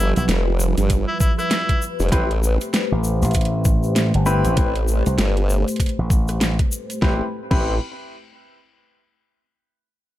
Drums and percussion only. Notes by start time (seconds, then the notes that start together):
0.16 closed hi-hat, shaker
0.29 snare, closed hi-hat, shaker
0.59 shaker
0.78 closed hi-hat, shaker
0.90 kick, closed hi-hat, shaker
1.20 kick, shaker
1.39 cross-stick, shaker
1.51 snare, closed hi-hat, shaker
1.69 kick, closed hi-hat
1.82 shaker
2.00 closed hi-hat, shaker
2.02 closed hi-hat
2.09 kick, closed hi-hat, shaker
2.12 closed hi-hat
2.31 closed hi-hat
2.43 shaker
2.61 closed hi-hat, shaker
2.74 snare, closed hi-hat, shaker
3.04 shaker
3.22 closed hi-hat, shaker
3.25 closed hi-hat
3.31 kick, closed hi-hat, shaker
3.35 closed hi-hat
3.41 closed hi-hat
3.45 closed hi-hat
3.65 kick, shaker
3.83 shaker
3.96 snare, closed hi-hat, shaker
4.14 closed hi-hat
4.26 cross-stick, shaker
4.45 closed hi-hat, shaker
4.57 kick, closed hi-hat, shaker
4.75 closed hi-hat
4.88 shaker
5.06 closed hi-hat, shaker
5.18 snare, closed hi-hat, shaker
5.37 closed hi-hat
5.50 shaker
5.68 closed hi-hat, shaker
5.76 kick, closed hi-hat
5.80 closed hi-hat, shaker
5.86 closed hi-hat
5.89 closed hi-hat
6.10 kick, shaker
6.28 cross-stick, closed hi-hat, shaker
6.41 snare, closed hi-hat, shaker
6.59 kick, closed hi-hat
6.72 shaker
6.90 closed hi-hat, shaker
7.02 kick, snare
7.51 kick, crash